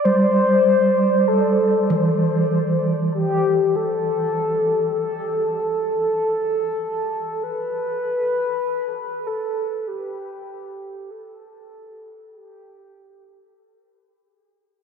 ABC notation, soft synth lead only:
X:1
M:4/4
L:1/8
Q:1/4=49
K:Am
V:1 name="Soft synth lead"
c2 A2 z G A2 | A4 B3 A | G2 A2 G3 z |]